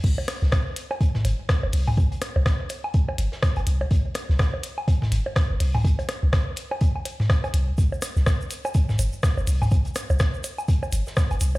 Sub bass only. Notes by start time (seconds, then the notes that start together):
0.04 C2
0.42 C2
1.25 G1
1.63 G1
1.73 C2
1.97 C2
2.36 C2
3.18 G1
3.57 G1
3.67 C2
3.91 C2
4.29 C2
5.12 G1
5.50 G1
5.60 C2
5.84 C2
6.23 C2
7.54 C2
7.78 C2
8.17 C2
8.99 G1
9.38 G1
9.47 C2
9.72 C2
10.10 C2
10.93 G1
11.31 G1
11.41 C2